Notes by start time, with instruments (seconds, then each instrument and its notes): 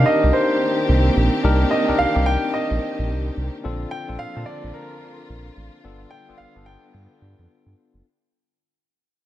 Already playing: string section D#3 A#3 C4 G4, tine electric piano D4 D#4 G4 A#4
0.06 grand piano D#5
0.24 analog synth bass C2
0.33 grand piano C5
0.89 analog synth bass C2
1.17 analog synth bass A#1
1.44 analog synth bass C2, tine electric piano D4 D#4 G4 A#4
1.71 grand piano D#5
1.88 analog synth bass C2, tine electric piano D4 D#4 G4 A#4
1.99 analog synth bass C2, grand piano F5
2.15 analog synth bass C2, tine electric piano C4 D#4 G4 A#4
2.26 grand piano G5
2.54 grand piano D#5
2.71 analog synth bass A#1
2.99 analog synth bass A#1
3.10 analog synth bass C2
3.37 analog synth bass C2
3.64 analog synth bass A#1, string section D3 F3 A#3 F4, tine electric piano C4 D4 F4 A4
3.91 grand piano G5
4.08 analog synth bass A#1, tine electric piano C4 D4 F4 A4
4.19 analog synth bass A#2, grand piano F5
4.36 analog synth bass A#2, tine electric piano C4 D4 F4 A5
4.46 grand piano D5
4.64 analog synth bass A#1
4.74 grand piano A#4
5.29 analog synth bass A#1
5.57 analog synth bass A1
5.84 analog synth bass G1, string section D3 G3 B3, tine electric piano B3 D4 F4 A4
6.11 grand piano G5
6.28 analog synth bass G1, tine electric piano B3 D4 F4 A4
6.38 analog synth bass G1, grand piano F5
6.56 analog synth bass G1, tine electric piano B3 D4 F4 A4
6.66 grand piano G5
6.94 analog synth bass G2
7.22 analog synth bass G2
7.39 analog synth bass F2
7.66 analog synth bass G2
7.94 analog synth bass F#1